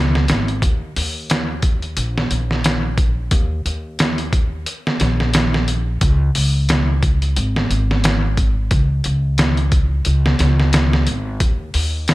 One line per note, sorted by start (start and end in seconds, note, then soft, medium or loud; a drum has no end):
0.00 0.25 C#2 loud
0.15 snare medium
0.28 0.59 G#1 medium
0.28 snare loud
0.28 closed hi-hat medium
0.48 closed hi-hat soft
0.62 0.92 D#2 medium
0.62 kick loud
0.62 closed hi-hat medium
0.96 1.94 D#2 medium
0.96 open hi-hat medium
1.30 snare loud
1.30 closed hi-hat medium
1.62 kick loud
1.62 closed hi-hat medium
1.82 closed hi-hat soft
1.97 2.27 A#1 medium
1.97 closed hi-hat medium
2.18 snare medium
2.31 3.29 A#1 medium
2.31 closed hi-hat medium
2.51 snare soft
2.64 snare loud
2.64 closed hi-hat loud
2.98 kick medium
2.98 closed hi-hat medium
3.31 3.62 D#2 medium
3.31 kick loud
3.31 closed hi-hat medium
3.65 4.64 D#2 medium
3.65 closed hi-hat medium
3.99 snare loud
3.99 closed hi-hat medium
4.18 closed hi-hat soft
4.33 kick medium
4.33 closed hi-hat medium
4.66 closed hi-hat medium
4.87 snare medium
5.00 5.99 A#1 medium
5.00 snare medium
5.00 closed hi-hat medium
5.20 snare soft
5.34 snare loud
5.34 closed hi-hat loud
5.54 snare medium
5.68 closed hi-hat medium
6.01 6.32 C#2 loud
6.01 kick loud
6.01 closed hi-hat medium
6.35 7.33 C#2 medium
6.35 open hi-hat medium
6.69 snare loud
6.69 closed hi-hat medium
7.03 kick medium
7.03 closed hi-hat medium
7.22 closed hi-hat soft
7.36 7.67 G#1 medium
7.36 closed hi-hat medium
7.56 snare medium
7.70 8.68 G#1 medium
7.70 closed hi-hat medium
7.91 snare soft
8.04 snare loud
8.04 closed hi-hat medium
8.37 kick medium
8.37 closed hi-hat medium
8.71 9.01 C#2 medium
8.71 kick loud
8.71 closed hi-hat medium
9.04 10.03 C#2 medium
9.04 closed hi-hat medium
9.38 snare loud
9.38 closed hi-hat medium
9.57 closed hi-hat soft
9.72 kick medium
9.72 closed hi-hat medium
10.05 10.36 C#2 medium
10.05 closed hi-hat medium
10.26 snare medium
10.39 11.04 C#2 loud
10.39 snare medium
10.39 closed hi-hat medium
10.60 snare soft
10.73 snare loud
10.73 closed hi-hat medium
10.93 snare medium
11.07 11.37 G#1 medium
11.07 closed hi-hat medium
11.40 11.71 D#2 medium
11.40 kick loud
11.40 closed hi-hat medium
11.74 12.14 D#2 medium
11.74 open hi-hat medium
12.08 snare loud
12.08 closed hi-hat medium